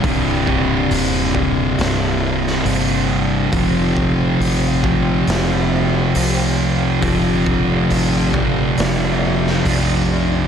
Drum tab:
HH |o---o---o---o---|o---o---o---o---|o---o---o---o---|
SD |--------o--o----|--------o-------|--------o--o----|
BD |o-o---o---------|o-o---o---------|o-o---o---------|